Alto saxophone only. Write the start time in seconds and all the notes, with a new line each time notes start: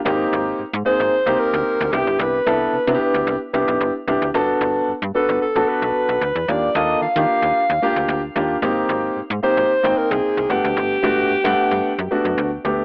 0.86 C5
1.40 A#4
1.93 G4
2.20 B4
5.15 A4
5.42 A4
5.69 B4
6.49 D5
6.76 D#5
7.02 F5
9.44 C5
9.98 A#4
10.11 G#4
10.51 G4